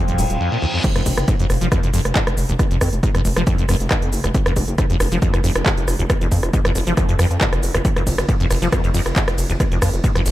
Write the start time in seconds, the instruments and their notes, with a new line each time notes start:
Already playing: synth drone F3 C4, reverse cymbal
0.08 analog synth bass D#1, acid bass F2, closed hi-hat, shaker
0.18 analog synth bass D#1, acid bass A#2, open hi-hat, shaker
0.30 analog synth bass D#1, closed hi-hat, shaker
0.40 acid bass F2
0.52 acid bass A#2
0.62 acid bass D#2
0.74 acid bass F2
0.84 acid bass F2, kick, closed hi-hat, crash, impact, shaker
0.96 analog synth bass F1, acid bass F2, cross-stick, closed hi-hat, shaker
1.06 analog synth bass F1, kick, open hi-hat, shaker
1.17 analog synth bass F#1, cross-stick, closed hi-hat, shaker
1.28 acid bass G#2, kick, closed hi-hat, shaker
1.39 analog synth bass F1, acid bass F2, closed hi-hat, shaker
1.50 analog synth bass F1, acid bass F1, cross-stick, open hi-hat, shaker
1.61 analog synth bass F1, acid bass F3, closed hi-hat, shaker
1.72 acid bass F2, kick, cross-stick, closed hi-hat, shaker
1.83 analog synth bass F1, acid bass F2, closed hi-hat, shaker
1.94 analog synth bass F1, acid bass F2, open hi-hat, shaker
2.05 analog synth bass F1, cross-stick, closed hi-hat, shaker
2.16 acid bass G#2, kick, clap, closed hi-hat, shaker
2.27 analog synth bass F1, cross-stick, closed hi-hat, shaker
2.37 analog synth bass F1, open hi-hat, shaker
2.49 analog synth bass F1, acid bass D#2, closed hi-hat, shaker
2.59 acid bass F2, kick, cross-stick, closed hi-hat, shaker
2.71 analog synth bass F1, acid bass F2, closed hi-hat, shaker
2.81 analog synth bass F2, kick, cross-stick, open hi-hat, shaker
2.93 analog synth bass F1, closed hi-hat, shaker
3.03 acid bass G#2, kick, closed hi-hat, shaker
3.15 analog synth bass F1, acid bass F2, cross-stick, closed hi-hat, shaker
3.25 acid bass F1, analog synth bass F1, open hi-hat, shaker
3.36 analog synth bass F1, acid bass F3, cross-stick, closed hi-hat, shaker
3.47 acid bass F2, kick, closed hi-hat, shaker
3.58 analog synth bass F1, acid bass F2, closed hi-hat, shaker
3.69 analog synth bass F1, acid bass F2, cross-stick, open hi-hat, shaker
3.80 analog synth bass F1, closed hi-hat, shaker
3.91 acid bass G#2, kick, cross-stick, clap, closed hi-hat, shaker
4.02 analog synth bass F2, closed hi-hat, shaker
4.13 analog synth bass F#1, open hi-hat, shaker
4.24 analog synth bass F1, acid bass D#2, cross-stick, closed hi-hat, shaker
4.34 acid bass F2, kick, closed hi-hat, shaker
4.46 analog synth bass F1, acid bass F2, cross-stick, closed hi-hat, shaker
4.56 analog synth bass F1, kick, open hi-hat, shaker
4.68 analog synth bass F#1, closed hi-hat, shaker
4.78 acid bass G#2, kick, cross-stick, closed hi-hat, shaker
4.90 analog synth bass F1, acid bass F2, closed hi-hat, shaker
5.00 acid bass F1, analog synth bass F1, cross-stick, open hi-hat, shaker
5.12 analog synth bass F1, acid bass F3, closed hi-hat, shaker
5.22 acid bass F2, kick, closed hi-hat, shaker
5.34 analog synth bass F1, acid bass F2, cross-stick, closed hi-hat, shaker
5.44 analog synth bass F1, acid bass F2, open hi-hat, shaker
5.56 analog synth bass F1, cross-stick, closed hi-hat, shaker
5.66 acid bass G#2, kick, clap, closed hi-hat, shaker
5.77 analog synth bass F1, closed hi-hat, shaker
5.88 analog synth bass F1, cross-stick, open hi-hat, shaker
5.99 analog synth bass F1, acid bass D#2, closed hi-hat, shaker
6.10 acid bass F2, kick, cross-stick, closed hi-hat, shaker
6.21 analog synth bass F1, acid bass F2, closed hi-hat, shaker
6.32 analog synth bass F2, kick, open hi-hat, shaker
6.43 analog synth bass F1, cross-stick, closed hi-hat, shaker
6.53 acid bass G#2, kick, closed hi-hat, shaker
6.65 analog synth bass F1, acid bass F2, cross-stick, closed hi-hat, shaker
6.75 analog synth bass F1, acid bass F1, open hi-hat, shaker
6.87 analog synth bass F1, acid bass F3, closed hi-hat, shaker
6.97 acid bass F2, kick, cross-stick, closed hi-hat, shaker
7.09 analog synth bass F2, acid bass F2, closed hi-hat, shaker
7.19 analog synth bass F2, acid bass F2, cross-stick, open hi-hat, shaker
7.31 analog synth bass F2, closed hi-hat, shaker
7.41 acid bass G#2, kick, clap, closed hi-hat, shaker
7.52 analog synth bass F1, cross-stick, closed hi-hat, shaker
7.63 analog synth bass F1, open hi-hat, shaker
7.74 analog synth bass F1, acid bass D#2, cross-stick, closed hi-hat, shaker
7.85 acid bass F2, kick, closed hi-hat, shaker
7.96 analog synth bass F1, acid bass F2, cross-stick, closed hi-hat, shaker
8.07 analog synth bass F1, kick, open hi-hat, ride, shaker
8.18 analog synth bass F#1, cross-stick, closed hi-hat, shaker
8.29 acid bass G#2, kick, closed hi-hat, shaker
8.40 analog synth bass F1, acid bass F2, closed hi-hat, shaker
8.50 acid bass F1, analog synth bass F1, cross-stick, open hi-hat, ride, shaker
8.62 analog synth bass F1, acid bass F3, closed hi-hat, shaker
8.72 acid bass F2, kick, cross-stick, closed hi-hat, shaker
8.84 analog synth bass F1, acid bass F2, closed hi-hat, shaker
8.94 analog synth bass F1, acid bass F2, open hi-hat, ride, shaker
9.06 analog synth bass F1, cross-stick, closed hi-hat, shaker
9.16 acid bass G#2, kick, clap, closed hi-hat, shaker
9.28 analog synth bass F1, cross-stick, closed hi-hat, shaker
9.38 analog synth bass F1, open hi-hat, ride, shaker
9.50 analog synth bass F1, acid bass D#2, closed hi-hat, shaker
9.60 acid bass F2, kick, cross-stick, closed hi-hat, shaker
9.72 analog synth bass F1, acid bass F2, closed hi-hat, shaker
9.82 analog synth bass F2, kick, cross-stick, open hi-hat, ride, shaker
9.93 analog synth bass F1, closed hi-hat, shaker
10.04 acid bass G#2, kick, closed hi-hat, shaker
10.15 analog synth bass F1, acid bass F2, cross-stick, closed hi-hat, shaker
10.26 acid bass F1, analog synth bass F1, open hi-hat, ride, shaker